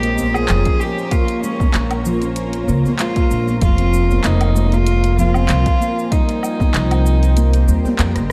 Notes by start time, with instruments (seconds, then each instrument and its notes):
Already playing: upright bass A#1, ambient pad A#3 F4 G4 C5 C#5 D#5, cello G4, synth texture A#4 A#5
0.03 handpan A#3, closed hi-hat, shaker
0.18 djembe slap, djembe bass, shaker
0.34 cello G#4, djembe tone, low woodblock, shaker
0.49 upright bass F1, handpan F3, clap, closed hi-hat, shaker
0.65 handpan C#4, kick, closed hi-hat, shaker
0.80 cello G4, djembe slap, shaker
0.98 shaker
1.11 handpan A#3, cello F4, kick, closed hi-hat, shaker
1.28 closed hi-hat, shaker
1.43 handpan G#3, cello C#4, shaker
1.60 handpan A#3, kick, djembe tone, djembe bass, shaker
1.74 upright bass A#1, clap, closed hi-hat, shaker
1.91 closed hi-hat, low woodblock, shaker
2.05 handpan F3, shaker
2.22 handpan C#4, closed hi-hat, shaker
2.36 closed hi-hat, shaker
2.53 closed hi-hat, djembe tone, shaker
2.68 upright bass C#2, handpan A#3, shaker
2.86 djembe tone, djembe bass, shaker
2.99 handpan G#3, cello F4, clap, closed hi-hat, shaker
3.16 handpan A#3, kick, closed hi-hat, shaker
3.31 upright bass A#1, djembe slap, shaker
3.48 djembe tone, shaker
3.61 upright bass F1, handpan F3, cello F4, kick, closed hi-hat, shaker
3.78 handpan C4, closed hi-hat, shaker
3.93 shaker
4.11 djembe tone, djembe bass, shaker
4.24 upright bass F1, handpan A#3, cello D#4, clap, closed hi-hat, shaker
4.37 ambient pad G#5, closed hi-hat, low woodblock
4.42 shaker
4.56 handpan G#3, shaker
4.72 handpan A#3, cello F4, ambient pad G5, closed hi-hat, shaker
4.87 closed hi-hat, shaker
5.04 closed hi-hat, shaker
5.18 handpan F3, cello F4, djembe slap, djembe bass, shaker
5.34 handpan C4, djembe tone, low woodblock, shaker
5.49 upright bass C2, clap, closed hi-hat, shaker
5.66 kick, closed hi-hat, djembe slap, shaker
5.81 handpan A#3, djembe slap, shaker
5.99 shaker
6.12 handpan G3, ambient pad C4, cello D#4, kick, closed hi-hat, shaker
6.29 handpan A#3, ambient pad G4, closed hi-hat, shaker
6.43 low woodblock, shaker
6.60 kick, djembe tone, djembe bass, shaker
6.74 upright bass C2, handpan F3, clap, closed hi-hat, shaker
6.81 ambient pad D#5
6.91 handpan C4, closed hi-hat, low woodblock, shaker
7.05 djembe slap, shaker
7.23 closed hi-hat, shaker
7.37 handpan A#3, closed hi-hat, shaker
7.54 closed hi-hat, djembe tone, shaker
7.68 upright bass D#2, handpan G3, shaker
7.85 handpan A#3, djembe tone, djembe bass, shaker
7.99 upright bass F2, clap, closed hi-hat, shaker
8.16 upright bass G1, cross-stick, closed hi-hat, djembe tone, shaker